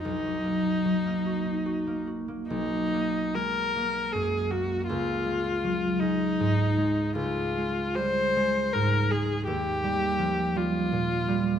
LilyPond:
<<
  \new Staff \with { instrumentName = "Viola" } { \time 6/8 \key b \lydian \tempo 4. = 53 dis'2~ dis'8 r8 | dis'4 ais'4 gis'8 fis'8 | eis'4. dis'4. | eis'4 bis'4 ais'8 gis'8 |
g'4. eis'4. | }
  \new Staff \with { instrumentName = "Harp" } { \clef bass \time 6/8 \key b \lydian b,,16 fis16 ais16 dis'16 fis16 ais16 fis'16 dis'16 fis'16 ais16 fis'16 ais16 | b,,8 ais8 gis8 ais8 fis,8 ais8 | cis,8 gis8 fis8 gis8 gis,8 gis8 | cis,8 gis8 g8 gis8 gis,8 gis8 |
dis,8 g8 eis8 g8 ais,8 g8 | }
>>